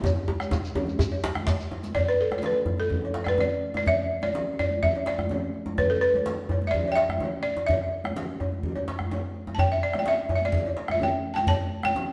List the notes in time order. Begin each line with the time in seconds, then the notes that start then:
0.03 bombo low, cowbell, djembe slap, djembe tone, low conga, djembe bass, shekere
0.16 high conga, djembe tone
0.28 high conga, djembe tone
0.40 bombo rim, cowbell, high conga, shekere
0.51 bombo low, djembe slap, djembe tone, high conga, shekere
0.64 djembe slap, high conga, shekere
0.75 cowbell, djembe slap, djembe tone, high conga, low conga
0.87 djembe tone, high conga, shekere
0.99 bombo low, djembe tone, djembe bass, shekere
1.12 cowbell
1.24 djembe slap, shekere
1.35 bombo rim, djembe slap, high conga, djembe tone, low conga
1.47 bombo low, cowbell, djembe slap, shekere
1.60 djembe slap, high conga, shekere
1.71 djembe tone
1.83 djembe slap, high conga, shekere
1.95 D5, bombo low, cowbell, djembe slap, low conga, djembe bass
2.07 B4, high conga
2.21 A4
2.31 bombo rim, cowbell, djembe slap, djembe tone, high conga
2.38 D5, low conga
2.43 B4, djembe slap
2.66 djembe tone, djembe bass
2.78 A4, high conga
2.90 bombo low, djembe slap, high conga, low conga
3.02 cowbell, djembe tone
3.14 djembe slap
3.24 D5, bombo rim, high conga, djembe bass
3.28 B4
3.38 D5, cowbell, djembe tone, high conga, low conga
3.50 high conga
3.62 djembe slap
3.74 D5, djembe slap, djembe tone, high conga
3.86 E5, bombo low, cowbell, djembe slap, low conga, djembe bass
3.98 high conga
4.22 D5, cowbell, djembe slap, high conga, djembe tone
4.34 djembe slap, low conga
4.59 D5, cowbell, djembe bass
4.70 high conga
4.83 E5, bombo low, high conga, low conga
4.95 cowbell, djembe tone
5.06 D5, djembe slap
5.18 bombo rim, high conga, djembe bass
5.29 cowbell, high conga, djembe tone, low conga
5.42 high conga
5.54 djembe slap
5.66 djembe slap, djembe tone, high conga
5.78 B4, bombo low, cowbell, djembe slap, low conga, djembe bass
5.90 A4, high conga
6.01 B4
6.14 cowbell, djembe slap, djembe tone, high conga
6.26 djembe slap, low conga
6.49 cowbell, djembe tone, djembe bass
6.62 high conga
6.67 D5 E5
6.73 bombo low, djembe slap, high conga, low conga
6.85 cowbell, djembe tone
6.92 E5 G5
6.96 djembe slap
7.09 bombo rim, high conga, djembe bass
7.20 cowbell, high conga, djembe tone, low conga
7.33 high conga
7.43 D5, djembe slap
7.57 djembe slap, djembe tone
7.67 E5, bombo low, cowbell, djembe slap, high conga, low conga, djembe bass
7.80 bombo rim, high conga
7.93 djembe slap
8.04 bombo rim, cowbell, high conga, djembe tone
8.16 djembe slap, high conga, low conga
8.29 djembe slap
8.40 bombo rim, cowbell, djembe slap, djembe bass
8.52 djembe slap, high conga
8.63 bombo low, high conga, low conga
8.76 cowbell, high conga, djembe tone
8.87 djembe slap, high conga
8.99 bombo rim, djembe slap, high conga, djembe bass
9.11 bombo rim, cowbell, high conga, djembe tone, low conga
9.24 djembe slap
9.36 djembe slap
9.47 djembe slap, high conga, djembe tone
9.55 A5, bombo low, djembe slap, djembe bass
9.59 G5, cowbell, low conga
9.71 E5, high conga
9.83 D5
9.93 bombo rim, cowbell, djembe slap, djembe tone, high conga
9.99 G5
10.05 E5, djembe slap, low conga
10.29 cowbell, djembe tone, djembe bass
10.36 E5
10.41 D5, high conga
10.52 bombo low, djembe slap, high conga, low conga
10.65 cowbell, djembe tone
10.77 djembe slap
10.88 E5, bombo rim, high conga, djembe bass
11.00 G5, cowbell, high conga, djembe tone, low conga
11.12 high conga
11.26 djembe slap
11.34 G5 A5, djembe slap, high conga, djembe tone
11.47 A5, bombo low, cowbell, djembe slap, low conga, djembe bass
11.60 high conga
11.83 G5, bombo rim, cowbell, djembe slap, high conga, djembe tone
11.95 djembe slap, low conga